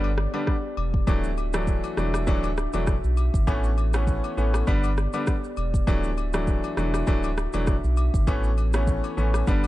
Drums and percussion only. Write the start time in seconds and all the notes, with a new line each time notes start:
0.04 high agogo
0.18 cross-stick
0.34 high agogo
0.47 kick, cross-stick
0.77 high agogo
0.94 kick
1.07 kick, high agogo, shaker
1.24 shaker
1.38 high agogo, shaker
1.53 cross-stick, shaker
1.67 kick, shaker
1.84 high agogo, shaker
1.97 cross-stick, shaker
2.14 cross-stick, high agogo, shaker
2.27 kick, shaker
2.44 high agogo, shaker
2.57 cross-stick, shaker
2.73 high agogo, shaker
2.87 kick, cross-stick, shaker
3.04 shaker
3.17 high agogo, shaker
3.34 kick, shaker
3.47 kick, high agogo, shaker
3.64 shaker
3.78 high agogo, shaker
3.93 cross-stick, shaker
4.07 kick, shaker
4.24 high agogo, shaker
4.38 shaker
4.54 cross-stick, high agogo, shaker
4.67 kick, shaker
4.84 high agogo, shaker
4.97 cross-stick, shaker
5.13 high agogo, shaker
5.27 kick, cross-stick, shaker
5.44 shaker
5.57 high agogo, shaker
5.74 kick, shaker
5.87 kick, high agogo, shaker
6.04 shaker
6.18 high agogo, shaker
6.33 cross-stick, shaker
6.47 kick, shaker
6.64 high agogo, shaker
6.77 cross-stick, shaker
6.94 cross-stick, high agogo, shaker
7.07 kick, shaker
7.24 high agogo, shaker
7.37 cross-stick, shaker
7.53 high agogo, shaker
7.67 kick, cross-stick, shaker
7.84 shaker
7.97 high agogo, shaker
8.14 kick, shaker
8.27 kick, high agogo, shaker
8.44 shaker
8.57 high agogo, shaker
8.73 cross-stick, shaker
8.87 kick, shaker
9.04 high agogo, shaker
9.18 shaker
9.34 cross-stick, high agogo, shaker
9.47 kick, shaker
9.64 high agogo, shaker